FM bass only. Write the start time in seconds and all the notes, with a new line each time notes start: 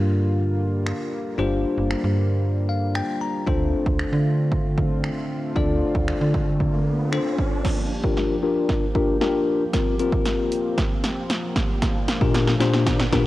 Already playing: G2
1.39 G1
1.78 G1
2.04 G2
3.47 D2
3.86 D2
4.13 D3
5.56 D2
5.95 D2
6.21 D3